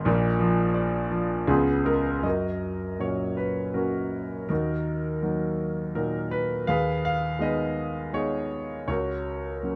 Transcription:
0.00 1.46 D#4 medium
0.00 1.45 A#4 medium
0.05 1.45 A#1 medium
0.05 1.44 A#2 medium
0.39 1.09 F3 medium
0.74 1.46 D5 soft
1.11 1.47 F3 medium
1.47 2.20 C#2 medium
1.47 2.22 C#3 medium
1.47 2.21 B3 soft
1.47 2.21 F4 soft
1.47 1.87 G#4 medium
1.85 2.23 G#3 soft
1.85 2.23 A#4 medium
2.23 4.45 F#2 soft
2.23 3.35 F#4 soft
2.23 3.35 A#4 soft
2.23 3.03 D#5 soft
2.99 3.73 A#2 soft
2.99 3.72 F#3 soft
2.99 3.73 C#4 soft
2.99 3.36 C#5 soft
3.37 3.76 B4 soft
3.74 4.47 F#3 soft
3.74 4.47 A#3 soft
3.74 4.48 C#4 soft
3.74 4.46 F#4 soft
3.74 4.47 A#4 soft
4.49 6.64 D#2 soft
4.49 5.21 D#4 soft
4.49 5.93 F#4 soft
4.49 5.92 A#4 medium
5.22 5.93 F#3 soft
5.22 5.94 A#3 soft
5.22 5.94 D#4 soft
5.95 6.66 A#2 soft
5.95 6.66 F#3 soft
5.95 6.66 D#4 soft
5.95 6.29 A#4 medium
6.31 6.65 B4 medium
6.67 8.84 D#2 soft
6.67 7.42 G#4 soft
6.67 7.42 B4 medium
6.67 7.03 F5 medium
7.05 7.42 F5 medium
7.39 8.11 G#3 soft
7.39 8.11 B3 soft
7.39 8.12 D#4 soft
7.39 8.17 D#5 medium
7.43 8.15 G#4 soft
7.43 8.48 B4 soft
8.13 8.85 G#3 soft
8.13 8.86 B3 soft
8.13 8.86 D#4 soft
8.13 8.85 G#4 soft
8.13 8.84 C#5 medium
8.88 9.76 C#2 soft
8.88 9.76 F#4 soft
8.88 9.76 A#4 soft
8.88 9.76 C#5 medium
9.63 9.76 F#3 soft
9.63 9.76 A#3 soft
9.63 9.76 C#4 soft

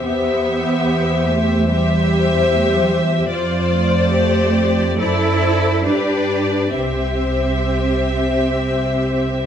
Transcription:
0.03 3.27 E2 medium
0.03 1.27 B3 medium
0.03 1.67 G4 soft
0.03 1.67 C5 medium
0.03 1.67 E5 soft
1.30 1.70 A3 medium
1.70 2.57 G3 medium
1.70 3.28 G4 medium
1.70 3.28 C5 medium
1.70 3.29 E5 medium
2.57 2.66 A3 medium
2.66 2.75 G3 medium
2.75 2.83 F3 medium
2.84 2.92 G3 medium
3.31 4.97 F2 medium
3.31 4.10 F4 soft
3.31 4.97 C5 medium
3.31 4.97 D5 medium
3.71 4.96 A3 medium
4.11 4.98 G4 medium
5.00 5.86 F#2 medium
5.00 5.86 E4 medium
5.00 5.85 A4 medium
5.00 5.84 C5 medium
5.00 5.85 D5 soft
5.86 6.74 G2 soft
5.86 6.74 D4 medium
5.86 6.72 G4 medium
5.86 6.75 B4 soft
5.86 6.73 D5 soft
6.74 9.46 C2 soft
6.74 9.46 C4 medium
6.74 9.46 G4 soft
6.74 9.46 C5 soft
6.74 9.46 E5 soft

